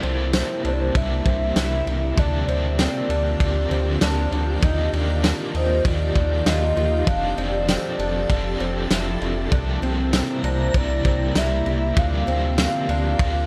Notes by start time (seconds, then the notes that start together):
Already playing: C3 G3 A#3 D4 E4
0.02 C2 C4 E4 G4, ride
0.07 A#3
0.33 C4, snare, ride, tambourine
0.64 C2 D4 C5, ride
0.73 D5
0.80 C5
0.92 C2 C3 G3, kick, ride
0.97 A#3 E4 G4 E5
1.26 C2 C4, kick, ride
1.56 C2 E4, snare, ride, tambourine
1.87 C2 E4, ride
2.17 D2 D3 F3 A#3 C4 D4 F4 G4 D5, kick, ride
2.47 D2 C4 D4 G4, ride
2.52 A#3
2.79 C4, snare, ride, tambourine
3.09 D2 D4, ride
3.38 D2 D3 F3, kick, ride
3.43 A#3 D4 G4
3.70 D2 C4, ride
4.01 D2 D4, snare, ride, tambourine
4.32 D2 D4, ride
4.61 D#2 D#3 F3 A#3 D4 D#4 G4, kick, ride
4.91 D#2 D4 G4, ride
4.97 A#3
5.24 D4, snare, ride, tambourine
5.54 D#2 D#4 C5, ride
5.83 D#2 D#3 F3, kick, ride
5.87 A#3 G4
6.15 D#2 D4, kick, ride
6.46 D#2 F4 D#5, snare, ride, tambourine
6.77 D#2 F4, ride
7.05 F1 F3 C4 D4 A4 F5, kick, ride
7.11 D4 A4
7.37 F1 C4 D5, ride
7.68 C4, snare, ride, tambourine
7.99 F1 D4, ride
8.27 F1 F3 C4, kick, ride
8.33 D4 A4
8.60 F1 C4, ride
8.90 F1 E4, snare, ride, tambourine
9.21 F1 E4, ride
9.50 C2 C3 G3 A#3 D4 E4, kick, ride
9.54 A#3 E4 G4
9.74 A#5
9.82 C2 C4, ride
10.13 C4, snare, ride, tambourine
10.43 C2 D4 C5, ride
10.72 C2 C3 G3, kick, ride
10.76 A#3 E4 G4 D5
11.05 C2 C4, kick, ride
11.35 C2 E4 E5, snare, ride, tambourine
11.66 C2 E4, ride
11.94 D2 D3 F3 C4 D4 F4 G4, kick, ride
11.99 A#3 D4 G4 F5
12.27 D2 C4 F5, ride
12.58 C4, snare, ride, tambourine
12.88 D2 D4, ride
13.17 D2 D3 F3 A#5, kick, ride
13.21 A#3 D4 G4